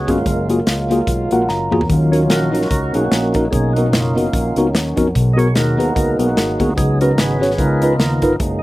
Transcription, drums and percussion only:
0.08 kick, closed hi-hat
0.26 kick, closed hi-hat
0.49 closed hi-hat
0.67 snare, closed hi-hat
0.91 closed hi-hat
1.07 kick, closed hi-hat
1.31 closed hi-hat
1.49 snare
1.72 mid tom
1.81 floor tom
1.90 kick, closed hi-hat
2.13 closed hi-hat
2.30 snare, closed hi-hat
2.55 closed hi-hat
2.62 snare
2.71 kick, closed hi-hat
2.94 closed hi-hat
3.12 snare, closed hi-hat
3.34 kick, closed hi-hat
3.53 kick, closed hi-hat
3.76 closed hi-hat
3.93 snare, closed hi-hat
4.18 closed hi-hat
4.33 kick, closed hi-hat
4.56 closed hi-hat
4.75 snare, closed hi-hat
4.97 kick, closed hi-hat
5.15 kick, closed hi-hat
5.39 closed hi-hat
5.55 snare, closed hi-hat
5.80 closed hi-hat
5.96 kick, closed hi-hat
6.19 closed hi-hat
6.37 snare, closed hi-hat
6.60 kick, closed hi-hat
6.78 kick, closed hi-hat
7.01 closed hi-hat
7.18 snare, closed hi-hat
7.42 snare, closed hi-hat
7.51 snare
7.58 kick, closed hi-hat
7.82 closed hi-hat
8.00 snare, closed hi-hat
8.22 kick, closed hi-hat
8.40 kick, closed hi-hat

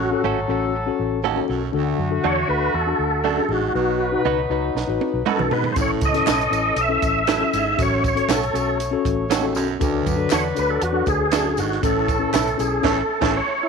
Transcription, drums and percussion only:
4.77 snare
5.01 high tom
5.26 mid tom
5.39 mid tom
5.51 floor tom
5.64 floor tom
5.76 kick, closed hi-hat, tambourine
6.01 kick, closed hi-hat, tambourine
6.14 snare, closed hi-hat
6.27 snare, clap, closed hi-hat, tambourine
6.41 closed hi-hat
6.53 closed hi-hat, tambourine
6.77 closed hi-hat, tambourine
7.02 kick, closed hi-hat, tambourine
7.27 snare, clap, closed hi-hat, tambourine
7.53 closed hi-hat, tambourine
7.79 kick, closed hi-hat, tambourine
8.04 kick, closed hi-hat, tambourine
8.17 closed hi-hat
8.29 snare, clap, closed hi-hat, tambourine
8.43 closed hi-hat
8.55 closed hi-hat, tambourine
8.80 closed hi-hat, tambourine
9.05 kick, closed hi-hat
9.31 snare, clap, closed hi-hat, tambourine
9.55 closed hi-hat, tambourine
9.81 kick, closed hi-hat, tambourine
10.06 kick, closed hi-hat, tambourine
10.30 snare, clap, closed hi-hat, tambourine
10.56 closed hi-hat, tambourine
10.82 closed hi-hat
11.06 kick, closed hi-hat, tambourine
11.32 snare, clap, closed hi-hat, tambourine
11.57 closed hi-hat, tambourine
11.72 snare
11.83 kick, closed hi-hat, tambourine
12.08 kick, closed hi-hat, tambourine
12.34 snare, clap, closed hi-hat, tambourine
12.48 closed hi-hat
12.59 closed hi-hat, tambourine
12.84 kick, snare, crash
13.22 kick, snare, crash

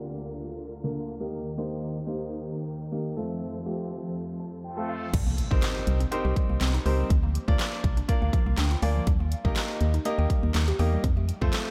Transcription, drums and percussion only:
5.14 kick, closed hi-hat, crash
5.38 closed hi-hat
5.51 kick
5.62 snare, clap, closed hi-hat
5.87 closed hi-hat
6.01 closed hi-hat
6.12 closed hi-hat
6.36 kick, closed hi-hat
6.61 snare, clap, closed hi-hat
6.74 closed hi-hat
6.86 open hi-hat
7.10 kick, closed hi-hat
7.35 closed hi-hat
7.48 kick
7.59 snare, clap, closed hi-hat
7.84 kick, closed hi-hat
7.97 closed hi-hat
8.09 kick, closed hi-hat
8.33 kick, closed hi-hat
8.57 snare, clap, closed hi-hat
8.71 closed hi-hat
8.82 open hi-hat
9.07 kick, closed hi-hat
9.32 closed hi-hat
9.45 kick
9.56 snare, clap, closed hi-hat
9.81 closed hi-hat
9.94 closed hi-hat
10.05 closed hi-hat
10.30 kick, closed hi-hat
10.54 snare, clap, closed hi-hat
10.68 closed hi-hat
10.79 open hi-hat
11.04 kick, closed hi-hat
11.29 closed hi-hat
11.42 kick
11.53 snare, clap, closed hi-hat

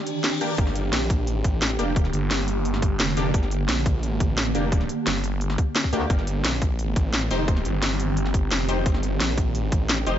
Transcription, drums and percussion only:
0.07 closed hi-hat
0.24 snare, closed hi-hat
0.41 snare, closed hi-hat
0.58 kick, closed hi-hat
0.67 snare
0.76 closed hi-hat
0.93 snare, closed hi-hat
1.10 kick, closed hi-hat
1.27 closed hi-hat
1.44 kick, closed hi-hat
1.62 snare, closed hi-hat
1.70 snare
1.79 closed hi-hat
1.96 kick, closed hi-hat
2.05 snare
2.13 closed hi-hat
2.31 snare, closed hi-hat
2.48 closed hi-hat
2.65 closed hi-hat
2.74 snare
2.82 kick, closed hi-hat
3.00 snare, closed hi-hat
3.17 closed hi-hat
3.34 kick, closed hi-hat
3.43 snare
3.51 closed hi-hat
3.69 snare, closed hi-hat
3.86 kick, closed hi-hat
4.03 closed hi-hat
4.20 kick, closed hi-hat
4.38 snare, closed hi-hat
4.46 snare
4.55 closed hi-hat
4.72 kick, closed hi-hat
4.81 snare
4.89 closed hi-hat
5.07 snare, closed hi-hat
5.24 closed hi-hat
5.41 closed hi-hat
5.50 snare
5.58 kick, closed hi-hat
5.76 snare, closed hi-hat
5.84 kick
5.93 closed hi-hat
6.10 kick, closed hi-hat
6.19 snare
6.27 closed hi-hat
6.44 snare, closed hi-hat
6.62 kick, closed hi-hat
6.79 closed hi-hat
6.96 kick, closed hi-hat
7.13 snare, closed hi-hat
7.22 snare
7.31 closed hi-hat
7.48 kick, closed hi-hat
7.57 snare
7.65 closed hi-hat
7.82 snare, closed hi-hat
8.00 closed hi-hat
8.17 closed hi-hat
8.26 snare
8.34 kick, closed hi-hat
8.51 snare, closed hi-hat
8.69 closed hi-hat
8.86 kick, closed hi-hat
8.95 snare
9.03 closed hi-hat
9.20 snare, closed hi-hat
9.38 kick, closed hi-hat
9.55 closed hi-hat
9.72 kick, closed hi-hat
9.89 snare, closed hi-hat
9.98 snare
10.07 closed hi-hat

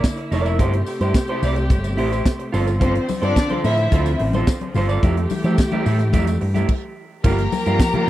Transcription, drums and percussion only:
0.04 kick, snare, closed hi-hat, tambourine
0.18 closed hi-hat
0.32 open hi-hat, tambourine
0.46 closed hi-hat, tambourine
0.59 kick, closed hi-hat, tambourine
0.73 closed hi-hat
0.86 open hi-hat, tambourine
1.01 closed hi-hat, tambourine
1.14 kick, snare, closed hi-hat, tambourine
1.28 closed hi-hat
1.43 open hi-hat, tambourine
1.56 closed hi-hat, tambourine
1.70 kick, closed hi-hat, tambourine
1.84 closed hi-hat, tambourine
1.98 open hi-hat
2.12 closed hi-hat, tambourine
2.25 kick, snare, closed hi-hat, tambourine
2.40 closed hi-hat
2.54 open hi-hat, tambourine
2.67 closed hi-hat, tambourine
2.81 kick, closed hi-hat, tambourine, muted conga, low conga
2.95 closed hi-hat
3.09 open hi-hat, tambourine, muted conga, high conga
3.23 closed hi-hat, tambourine
3.36 kick, snare, closed hi-hat, tambourine, muted conga
3.49 closed hi-hat, high conga
3.64 open hi-hat, tambourine, muted conga
3.78 closed hi-hat, tambourine
3.92 kick, closed hi-hat, tambourine, high conga
4.06 closed hi-hat, tambourine
4.19 open hi-hat
4.33 closed hi-hat, tambourine, high conga
4.47 kick, snare, closed hi-hat, tambourine, muted conga
4.61 closed hi-hat, high conga
4.74 open hi-hat, tambourine, high conga, low conga
4.89 closed hi-hat, tambourine
5.03 kick, closed hi-hat, tambourine, muted conga, low conga
5.17 closed hi-hat
5.30 open hi-hat, tambourine, high conga
5.44 closed hi-hat, tambourine
5.58 kick, snare, closed hi-hat, tambourine, muted conga
5.72 closed hi-hat, high conga
5.86 open hi-hat, tambourine
5.99 closed hi-hat, tambourine
6.13 kick, closed hi-hat, tambourine, muted conga, high conga
6.27 closed hi-hat, tambourine
6.41 open hi-hat
6.55 closed hi-hat, tambourine, high conga
6.69 kick, crash
7.24 kick, crash, tambourine, muted conga, low conga
7.38 closed hi-hat
7.52 open hi-hat, tambourine, muted conga, high conga
7.66 closed hi-hat, tambourine
7.79 kick, snare, closed hi-hat, tambourine, muted conga
7.93 closed hi-hat, high conga, low conga

